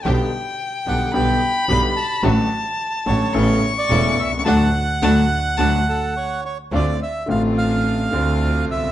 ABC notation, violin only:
X:1
M:4/4
L:1/16
Q:1/4=107
K:D
V:1 name="Violin"
g8 b8 | a8 c'6- c'3/2 c'/2 | a2 z2 a2 z2 a2 z6 | [K:Dm] z16 |]